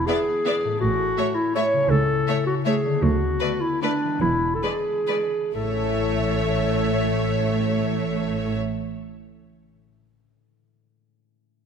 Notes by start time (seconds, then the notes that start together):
Already playing: E3 B3 D4 E4
0.06 B3 G#4 D5 E5
0.45 B3 D5 E5
0.64 A2
0.69 A3
0.73 C#4
0.78 A1 A2 E4 F#4
1.17 A3 C#5 E5
1.35 E4
1.55 A3 C#5 E5
1.73 C#3
1.78 A3
1.82 C#4
1.87 C#2 E4 A4
2.28 A3 C#5 E5
2.47 F#4
2.65 A3 G#4 C#5 E5
2.85 D3
2.90 A3
2.94 B3
2.99 D4 F#4
3.03 D2
3.40 A3 B4 D5
3.61 E4
3.82 A3 D4 B4 D5
4.04 E3
4.08 G#3
4.13 B3
4.18 E1 D4 E4
4.22 E2
4.55 A4
4.63 G#3 G#4 B4 D5
5.07 G#3 B4 D5
5.55 A1 A2 A3 A4 C#5 E5
5.62 A3
5.69 C#4
5.76 E4
5.83 C#5